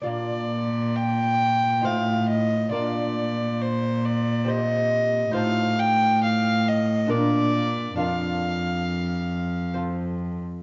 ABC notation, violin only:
X:1
M:3/4
L:1/8
Q:1/4=68
K:Bb
V:1 name="Violin"
d2 g2 f e | d2 c d e2 | f g f e d2 | f4 z2 |]